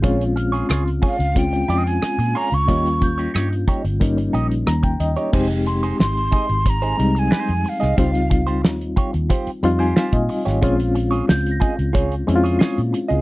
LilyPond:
<<
  \new Staff \with { instrumentName = "Celesta" } { \time 4/4 \key f \minor \tempo 4 = 91 <ees''' g'''>8 f'''2.~ f'''8 | r8 g'''2.~ g'''8 | r8 c'''8 c'''2.~ | c'''8 r2. r8 |
r4 g'''16 bes'''2~ bes'''8. | }
  \new Staff \with { instrumentName = "Flute" } { \time 4/4 \key f \minor r4. f''8 g''8. aes''8. bes''16 des'''16~ | des'''8. r2. r16 | r4 c'''4 bes''8. aes''8. f''8~ | f''4 r2. |
r1 | }
  \new Staff \with { instrumentName = "Clean electric guitar" } { \time 4/4 \key f \minor <f' aes' des''>16 r8 <f' aes' des''>16 <f' aes' des''>16 r16 <f' aes' des''>16 r8. <f' aes' ees''>16 r8. <f' aes' des''>16 r16 | <ees' g' des''>16 r8 <ees' g' des''>16 <ees' g' des''>16 r16 <ees' g' des''>16 r8. <ees' g' ees''>16 r4 <ees' g' des''>16 | <ees' aes' c''>16 r8 <ees' aes' c''>16 r8 <ees' aes' ees''>16 r8 <ees' aes' c''>16 r8 <ees' aes' c''>16 r8 <ees' aes' ees''>16 | <f' g' c''>16 r8 <f' g' c''>16 r8 <f' g' des''>16 r16 <f' g' c''>16 r8 <f' g' c''>16 <f' g' c''>16 r8 <f' g' des''>16 |
<f' aes' des''>16 r8 <f' aes' des''>16 r8 <f' aes' ees''>16 r16 <f' aes' des''>16 r8 <f' aes' des''>16 <f' aes' des''>16 r8 <f' aes' ees''>16 | }
  \new Staff \with { instrumentName = "Reed electric piano" } { \time 4/4 \key f \minor << { r1 | r2. bes''16 g''16 ees''8 | r1 | r2 r8 c'''16 aes''16 f''16 ees''8. |
r1 | } \\ { <aes c' des' f'>4. r8 <aes c' des' f'>4. r8 | <g bes des' f'>4. r8 <g bes des' ees'>4. r8 | <aes c' ees' g'>4. r4 <g aes c' ees'>4 r8 | <g c' ees' f'>4. r4 <g c' ees' f'>4 r8 |
<aes c' des' f'>4. r4 <aes c' des' e' f'>4 r8 | } >> }
  \new Staff \with { instrumentName = "Fingered electric bass" } { \clef bass \time 4/4 \key f \minor bes,,4 des,8 r16 des,8. f,8 r16 bes,16 r16 des,16 | ees,4 g,8 r16 g,,8. bes,,8 ees,8 ees,16 r16 | f,,4 aes,,8 r16 aes,,8. c,8 r16 f,16 r16 c,16 | des,4 ees,8 r16 ees,16 r8 f,8 r16 bes,16 r16 aes,,16 |
bes,,4 des,8 r16 des,8. f,8 r16 bes,16 r16 des,16 | }
  \new DrumStaff \with { instrumentName = "Drums" } \drummode { \time 4/4 <hh bd>16 hh16 hh16 hh16 <hh ss>16 hh16 <hho bd>16 hh16 <hh bd>16 hh16 hh16 hh16 <hh ss>16 hh16 hho16 hh16 | <hh bd>16 hh16 <hh bd>16 hh16 <hh ss>16 hh16 <hh bd>16 hh16 <hh bd>16 hh16 hh16 hh16 <hh ss>16 <hh bd>16 hh16 hh16 | <cymc bd>16 hh16 hh16 hh16 sn16 hh16 <hh bd>16 hh16 <hh bd>16 hh16 hh16 hh16 sn16 hh16 hho16 <hh sn>16 | <hh bd>16 hh16 <hh bd>16 hh16 sn16 hh16 <hh bd>16 hh16 <hh bd>16 hh16 hh16 hh16 sn16 <hh bd>16 hho16 <hh sn>16 |
<hh bd>16 hh16 hh16 hh16 sn16 hh16 <hh bd>16 hh16 <hh bd>16 hh16 hh16 hh16 sn16 hh16 hh16 hh16 | }
>>